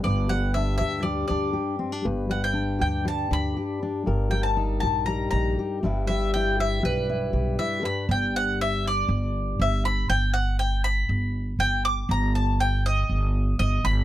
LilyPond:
<<
  \new Staff \with { instrumentName = "Mandolin" } { \time 4/4 \key g \major \tempo 4 = 120 d''8 fis''8 e''8 e''8 d''8 d''4 r8 | r8 fis''16 g''8. g''8 a''8 b''4 r8 | r8 g''16 a''8. a''8 bes''8 bes''4 r8 | e''8 g''8 e''8 b'4. e''8 b''8 |
g''8 fis''8 e''8 d''4. e''8 b''8 | g''8 fis''8 g''8 b''4. g''8 d'''8 | bes''8 a''8 g''8 ees''4. ees''8 b''8 | }
  \new Staff \with { instrumentName = "Steel-string acoustic guitar" } { \time 4/4 \key g \major << { b'4 d'8 g'4 d'8 g'8 c'16 d'16 | b'4 d'8 g'4 d'8 g'8 d'8 | bes'4 ees'8 g'4 ees'8 g'8 <g e' g' b'>8~ | <g e' g' b'>8 e'8 g'4 e'8 g'8 e'8 b'8 |
r1 | r1 | r1 | } \\ { <g, g>8 g4. g2 | g,8 g4. g2 | g,8 g4. g4. g,8 | g4. g2 g,8~ |
g,1 | r1 | r1 | } >> }
  \new Staff \with { instrumentName = "Upright bass" } { \clef bass \time 4/4 \key g \major g,,4. d,4 d,8 r4 | g,,4. d,4 d,8 r4 | g,,4. bes,,4 bes,,8 r8 g,,8~ | g,,4. b,,4 b,,8 r4 |
g,,2 g,,4 g,,4 | g,,2 g,,4 g,,4 | g,,2 g,,4 g,,8 g,,8 | }
>>